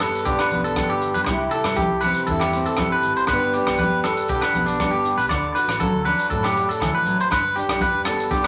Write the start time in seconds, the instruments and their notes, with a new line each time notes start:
Already playing: steel-string acoustic guitar G2 G3 D4 B4
0.00 steel-string acoustic guitar B3, clean electric guitar A4, cross-stick, closed hi-hat, muted conga, low agogo
0.15 closed hi-hat
0.25 fingered electric bass B1, steel-string acoustic guitar D3 D4, clean electric guitar G4, kick, closed hi-hat, muted conga
0.39 clean electric guitar B4, cross-stick, low agogo
0.51 fingered electric bass B1, steel-string acoustic guitar B3, closed hi-hat, muted conga, high conga
0.64 clean electric guitar A4, closed hi-hat
0.76 steel-string acoustic guitar G3 B4, kick, cross-stick, closed hi-hat, high conga, low agogo
0.90 fingered electric bass G1, clean electric guitar G4
1.02 closed hi-hat
1.14 fingered electric bass G2, clean electric guitar B4, closed hi-hat
1.25 fingered electric bass C2, steel-string acoustic guitar C3, muted clean electric guitar stroke, kick, cross-stick, closed hi-hat, low agogo
1.29 steel-string acoustic guitar G3 E4 G4, muted steel-string acoustic guitar stroke, muted conga
1.51 steel-string acoustic guitar E4, clean electric guitar A4, closed hi-hat
1.64 fingered electric bass G2, cross-stick, closed hi-hat, low agogo
1.75 steel-string acoustic guitar G3, clean electric guitar G4, kick, closed hi-hat, high conga
1.90 fingered electric bass C2
2.01 clean electric guitar B4, closed hi-hat, muted conga, high conga, low agogo
2.05 steel-string acoustic guitar C4
2.14 closed hi-hat
2.27 fingered electric bass E2, steel-string acoustic guitar G2 E4, clean electric guitar A4, kick, closed hi-hat
2.40 clean electric guitar G4, cross-stick, low agogo
2.53 steel-string acoustic guitar C4, closed hi-hat, muted conga
2.66 clean electric guitar A4, closed hi-hat
2.77 fingered electric bass C2, steel-string acoustic guitar G3 G4, kick, cross-stick, closed hi-hat, high conga, low agogo
2.92 clean electric guitar B4
3.02 fingered electric bass G#1, closed hi-hat
3.16 clean electric guitar C5, closed hi-hat
3.27 fingered electric bass G1, steel-string acoustic guitar G2, clean electric guitar B4, kick, cross-stick, closed hi-hat, muted conga, low agogo
3.31 steel-string acoustic guitar G3 B3 D4 B4
3.53 clean electric guitar G4, closed hi-hat
3.57 steel-string acoustic guitar D4
3.67 fingered electric bass B1, cross-stick, closed hi-hat, low agogo
3.78 clean electric guitar B4, kick, closed hi-hat, high conga
3.82 steel-string acoustic guitar G3
3.91 fingered electric bass E1
4.04 clean electric guitar A4, cross-stick, closed hi-hat, muted conga, low agogo
4.17 closed hi-hat
4.28 fingered electric bass B1, steel-string acoustic guitar D3 D4, clean electric guitar G4, kick, closed hi-hat, muted conga
4.41 clean electric guitar B4, cross-stick, low agogo
4.53 fingered electric bass B1, steel-string acoustic guitar B3, closed hi-hat, muted conga, high conga
4.66 clean electric guitar D4, closed hi-hat
4.79 steel-string acoustic guitar G3 B4, kick, cross-stick, closed hi-hat, high conga, low agogo
4.91 fingered electric bass G1, clean electric guitar G4
5.05 closed hi-hat
5.17 fingered electric bass B1, clean electric guitar B4, closed hi-hat
5.29 fingered electric bass D2, steel-string acoustic guitar D3, clean electric guitar D5, kick, cross-stick, closed hi-hat, muted conga, low agogo
5.55 steel-string acoustic guitar F#4, clean electric guitar B4, closed hi-hat
5.68 fingered electric bass A1, cross-stick, closed hi-hat, low agogo
5.80 steel-string acoustic guitar F#3, clean electric guitar A4, kick, closed hi-hat, high conga
5.93 fingered electric bass D2
6.05 steel-string acoustic guitar D4, clean electric guitar B4, closed hi-hat, muted conga, high conga, low agogo
6.19 closed hi-hat
6.30 fingered electric bass F#2, steel-string acoustic guitar A2 F#4, clean electric guitar A4, kick, closed hi-hat, muted conga
6.43 clean electric guitar G4, cross-stick, low agogo
6.56 steel-string acoustic guitar D4, closed hi-hat, muted conga
6.69 clean electric guitar A4, closed hi-hat
6.80 fingered electric bass D2, steel-string acoustic guitar E3, kick, cross-stick, closed hi-hat, high conga, low agogo
6.95 clean electric guitar B4
7.05 fingered electric bass A1, steel-string acoustic guitar F#3, closed hi-hat
7.20 clean electric guitar C5, closed hi-hat
7.30 fingered electric bass G1, steel-string acoustic guitar G2, clean electric guitar B4, kick, cross-stick, closed hi-hat, muted conga, low agogo
7.56 steel-string acoustic guitar D4, clean electric guitar G4, closed hi-hat
7.68 fingered electric bass B1, cross-stick, closed hi-hat, low agogo
7.80 steel-string acoustic guitar G3, clean electric guitar B4, kick, closed hi-hat, high conga
7.93 fingered electric bass E1
8.05 steel-string acoustic guitar B3, clean electric guitar A4, cross-stick, closed hi-hat, muted conga, low agogo
8.20 closed hi-hat
8.31 fingered electric bass B1, steel-string acoustic guitar D3 D4, clean electric guitar G4, kick, closed hi-hat, muted conga
8.44 clean electric guitar B4